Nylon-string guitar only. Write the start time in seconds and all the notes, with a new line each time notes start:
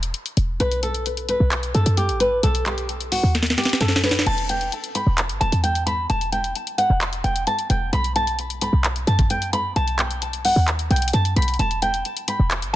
0.60 B4
0.83 A4
1.29 B4
1.75 A4
1.97 G4
2.20 B4
2.43 A4
2.66 G4
3.12 F#4
3.58 G4
3.81 A4
4.04 B4
4.27 A5
4.49 G5
4.95 B5
5.41 A5
5.63 G5
5.86 B5
6.10 A5
6.32 G5
6.78 F#5
7.24 G5
7.47 A5
7.70 G5
7.93 B5
8.16 A5
8.62 B5
9.07 A5
9.30 G5
9.53 B5
9.76 A5
9.99 G5
10.45 F#5
10.91 G5
11.14 A5
11.36 B5
11.59 A5
11.82 G5
12.28 B5